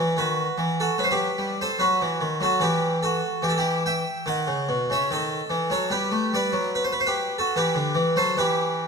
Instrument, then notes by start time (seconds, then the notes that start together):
harpsichord
Already playing: E3 B4 D#5
0.17 D#3 F#4 B4
0.58 E3
0.80 F#4 A4
0.98 F#3 B4
1.04 C5
1.11 G4 B4
1.38 G3
1.61 A4 C5
1.79 F#3 F#4 B4
2.02 E3
2.21 D#3
2.41 F#3 F#4 A4
2.60 E3 G4 B4
3.03 F#4 A4
3.42 E3 G4
3.49 A4
3.58 E4 G4
3.86 E5 G5
4.26 D#3 D#5 F#5
4.47 C#3
4.69 B2
4.90 C#3 C#5 E5
5.11 D#3 A4 D#5
5.50 E3
5.70 F#3 A4 C#5
5.90 G3 G4 B4
6.12 A3
6.33 G3 B4 D5
6.53 F#3
6.75 B4
6.84 C5
6.92 B4
7.00 C5
7.06 G4 B4
7.38 F#4 A4
7.56 E3 G4 B4
7.75 D3
7.95 E3
8.16 F#3 A4 C5
8.37 E3 G4 B4